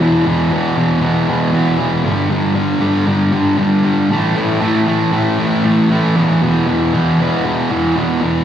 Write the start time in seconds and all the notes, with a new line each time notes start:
0.00 E2 B2 E3
0.26 E2 B2 E3
0.51 E2 B2 E3
0.77 E2 B2 E3
1.01 E2 B2 E3
1.27 E2 B2 E3
1.52 E2 B2 E3
1.78 E2 B2 E3
2.04 G2 D3 G3
2.30 G2 D3 G3
2.55 G2 D3 G3
2.80 G2 D3 G3
3.06 G2 D3 G3
3.32 G2 D3 G3
3.57 G2 D3 G3
3.84 G2 D3 G3
4.10 A2 E3 A3
4.35 A2 E3 A3
4.60 A2 E3 A3
4.87 A2 E3 A3
5.12 A2 E3 A3
5.39 A2 E3 A3
5.65 A2 E3 A3
5.91 A2 E3 A3
6.17 E2 B2 E3
6.42 E2 B2 E3
6.67 E2 B2 E3
6.93 E2 B2 E3
7.20 E2 B2 E3
7.44 E2 B2 E3
7.71 E2 B2 E3
7.96 E2 B2 E3
8.22 E2 B2 E3